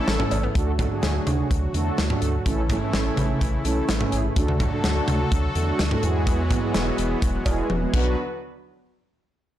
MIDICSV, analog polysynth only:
0, 0, Header, 1, 2, 480
1, 0, Start_track
1, 0, Tempo, 476190
1, 559, Time_signature, 4, 2, 24, 8
1, 9664, End_track
2, 0, Start_track
2, 0, Title_t, "Analog polysynth"
2, 0, Program_c, 0, 90
2, 0, Note_on_c, 0, 57, 96
2, 0, Note_on_c, 0, 61, 84
2, 0, Note_on_c, 0, 64, 86
2, 0, Note_on_c, 0, 69, 101
2, 362, Note_off_c, 0, 57, 0
2, 363, Note_off_c, 0, 61, 0
2, 363, Note_off_c, 0, 64, 0
2, 363, Note_off_c, 0, 69, 0
2, 557, Note_on_c, 0, 57, 94
2, 557, Note_on_c, 0, 62, 87
2, 557, Note_on_c, 0, 66, 89
2, 557, Note_on_c, 0, 69, 105
2, 719, Note_off_c, 0, 57, 0
2, 720, Note_off_c, 0, 62, 0
2, 720, Note_off_c, 0, 66, 0
2, 720, Note_off_c, 0, 69, 0
2, 797, Note_on_c, 0, 62, 86
2, 797, Note_on_c, 0, 66, 84
2, 797, Note_on_c, 0, 69, 103
2, 798, Note_on_c, 0, 57, 91
2, 879, Note_off_c, 0, 57, 0
2, 879, Note_off_c, 0, 62, 0
2, 879, Note_off_c, 0, 66, 0
2, 879, Note_off_c, 0, 69, 0
2, 920, Note_on_c, 0, 57, 91
2, 920, Note_on_c, 0, 62, 83
2, 920, Note_on_c, 0, 66, 83
2, 920, Note_on_c, 0, 68, 98
2, 1485, Note_off_c, 0, 57, 0
2, 1485, Note_off_c, 0, 62, 0
2, 1485, Note_off_c, 0, 66, 0
2, 1485, Note_off_c, 0, 68, 0
2, 1757, Note_on_c, 0, 66, 85
2, 1758, Note_on_c, 0, 57, 94
2, 1758, Note_on_c, 0, 62, 87
2, 1758, Note_on_c, 0, 69, 101
2, 2001, Note_off_c, 0, 57, 0
2, 2001, Note_off_c, 0, 62, 0
2, 2001, Note_off_c, 0, 66, 0
2, 2001, Note_off_c, 0, 69, 0
2, 2118, Note_on_c, 0, 62, 83
2, 2119, Note_on_c, 0, 57, 88
2, 2119, Note_on_c, 0, 66, 82
2, 2119, Note_on_c, 0, 69, 99
2, 2361, Note_off_c, 0, 62, 0
2, 2361, Note_off_c, 0, 66, 0
2, 2361, Note_off_c, 0, 69, 0
2, 2362, Note_off_c, 0, 57, 0
2, 2477, Note_on_c, 0, 57, 92
2, 2478, Note_on_c, 0, 61, 88
2, 2478, Note_on_c, 0, 64, 87
2, 2478, Note_on_c, 0, 69, 104
2, 2640, Note_off_c, 0, 57, 0
2, 2640, Note_off_c, 0, 61, 0
2, 2640, Note_off_c, 0, 64, 0
2, 2640, Note_off_c, 0, 69, 0
2, 2717, Note_on_c, 0, 57, 95
2, 2717, Note_on_c, 0, 61, 88
2, 2717, Note_on_c, 0, 64, 87
2, 2717, Note_on_c, 0, 69, 101
2, 2799, Note_off_c, 0, 57, 0
2, 2799, Note_off_c, 0, 61, 0
2, 2799, Note_off_c, 0, 64, 0
2, 2799, Note_off_c, 0, 69, 0
2, 2836, Note_on_c, 0, 57, 90
2, 2836, Note_on_c, 0, 64, 83
2, 2837, Note_on_c, 0, 61, 83
2, 2837, Note_on_c, 0, 69, 98
2, 3403, Note_off_c, 0, 57, 0
2, 3403, Note_off_c, 0, 61, 0
2, 3403, Note_off_c, 0, 64, 0
2, 3403, Note_off_c, 0, 69, 0
2, 3677, Note_on_c, 0, 57, 93
2, 3677, Note_on_c, 0, 61, 86
2, 3677, Note_on_c, 0, 64, 85
2, 3677, Note_on_c, 0, 69, 103
2, 3920, Note_off_c, 0, 57, 0
2, 3920, Note_off_c, 0, 61, 0
2, 3920, Note_off_c, 0, 64, 0
2, 3920, Note_off_c, 0, 69, 0
2, 4037, Note_on_c, 0, 57, 93
2, 4037, Note_on_c, 0, 61, 83
2, 4037, Note_on_c, 0, 64, 85
2, 4037, Note_on_c, 0, 68, 97
2, 4280, Note_off_c, 0, 57, 0
2, 4280, Note_off_c, 0, 61, 0
2, 4280, Note_off_c, 0, 64, 0
2, 4280, Note_off_c, 0, 68, 0
2, 4398, Note_on_c, 0, 57, 96
2, 4398, Note_on_c, 0, 62, 89
2, 4398, Note_on_c, 0, 66, 89
2, 4399, Note_on_c, 0, 69, 106
2, 4560, Note_off_c, 0, 57, 0
2, 4560, Note_off_c, 0, 62, 0
2, 4560, Note_off_c, 0, 66, 0
2, 4560, Note_off_c, 0, 69, 0
2, 4638, Note_on_c, 0, 62, 88
2, 4638, Note_on_c, 0, 66, 86
2, 4638, Note_on_c, 0, 69, 104
2, 4639, Note_on_c, 0, 57, 94
2, 4719, Note_off_c, 0, 62, 0
2, 4719, Note_off_c, 0, 66, 0
2, 4719, Note_off_c, 0, 69, 0
2, 4720, Note_off_c, 0, 57, 0
2, 4759, Note_on_c, 0, 66, 83
2, 4759, Note_on_c, 0, 69, 100
2, 4760, Note_on_c, 0, 57, 88
2, 4760, Note_on_c, 0, 62, 84
2, 5324, Note_off_c, 0, 66, 0
2, 5324, Note_off_c, 0, 69, 0
2, 5325, Note_off_c, 0, 57, 0
2, 5325, Note_off_c, 0, 62, 0
2, 5598, Note_on_c, 0, 66, 85
2, 5599, Note_on_c, 0, 57, 93
2, 5599, Note_on_c, 0, 62, 85
2, 5599, Note_on_c, 0, 69, 102
2, 5841, Note_off_c, 0, 57, 0
2, 5841, Note_off_c, 0, 62, 0
2, 5841, Note_off_c, 0, 66, 0
2, 5841, Note_off_c, 0, 69, 0
2, 5958, Note_on_c, 0, 62, 81
2, 5959, Note_on_c, 0, 66, 87
2, 5959, Note_on_c, 0, 69, 97
2, 5960, Note_on_c, 0, 57, 95
2, 6078, Note_on_c, 0, 56, 97
2, 6078, Note_on_c, 0, 64, 94
2, 6079, Note_off_c, 0, 57, 0
2, 6079, Note_off_c, 0, 62, 0
2, 6079, Note_off_c, 0, 66, 0
2, 6079, Note_off_c, 0, 69, 0
2, 6079, Note_on_c, 0, 59, 89
2, 6079, Note_on_c, 0, 68, 110
2, 6462, Note_off_c, 0, 56, 0
2, 6462, Note_off_c, 0, 64, 0
2, 6463, Note_off_c, 0, 59, 0
2, 6463, Note_off_c, 0, 68, 0
2, 6558, Note_on_c, 0, 56, 93
2, 6559, Note_on_c, 0, 59, 89
2, 6559, Note_on_c, 0, 64, 88
2, 6559, Note_on_c, 0, 66, 104
2, 6640, Note_off_c, 0, 56, 0
2, 6640, Note_off_c, 0, 59, 0
2, 6640, Note_off_c, 0, 64, 0
2, 6640, Note_off_c, 0, 66, 0
2, 6679, Note_on_c, 0, 59, 82
2, 6679, Note_on_c, 0, 64, 82
2, 6679, Note_on_c, 0, 68, 99
2, 6680, Note_on_c, 0, 56, 88
2, 7245, Note_off_c, 0, 56, 0
2, 7245, Note_off_c, 0, 59, 0
2, 7245, Note_off_c, 0, 64, 0
2, 7245, Note_off_c, 0, 68, 0
2, 7521, Note_on_c, 0, 59, 88
2, 7521, Note_on_c, 0, 64, 86
2, 7521, Note_on_c, 0, 68, 102
2, 7522, Note_on_c, 0, 56, 96
2, 7762, Note_off_c, 0, 64, 0
2, 7763, Note_off_c, 0, 56, 0
2, 7763, Note_off_c, 0, 59, 0
2, 7763, Note_off_c, 0, 68, 0
2, 7878, Note_on_c, 0, 56, 93
2, 7879, Note_on_c, 0, 59, 87
2, 7879, Note_on_c, 0, 64, 83
2, 7879, Note_on_c, 0, 68, 101
2, 7988, Note_off_c, 0, 59, 0
2, 7999, Note_off_c, 0, 56, 0
2, 7999, Note_off_c, 0, 64, 0
2, 7999, Note_off_c, 0, 68, 0
2, 7999, Note_on_c, 0, 54, 90
2, 8000, Note_on_c, 0, 59, 82
2, 8000, Note_on_c, 0, 62, 83
2, 8000, Note_on_c, 0, 66, 99
2, 8223, Note_off_c, 0, 54, 0
2, 8223, Note_off_c, 0, 59, 0
2, 8223, Note_off_c, 0, 62, 0
2, 8223, Note_off_c, 0, 66, 0
2, 9664, End_track
0, 0, End_of_file